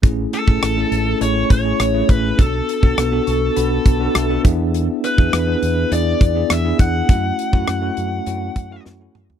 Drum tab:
HH |x-x-x-x-x-x-x-x-|x-x-x-x-x-x-x-x-|x-x-x-x-x-x-x-x-|x-x-x-x-x-x-----|
SD |----r-------r---|----r-------r---|----r-------r---|----r-------o---|
T2 |----------------|----------------|----------------|--------------o-|
FT |----------------|----------------|----------------|---------------o|
BD |o--o------o---o-|o--o------o---o-|---o------o---o-|o--o------o-----|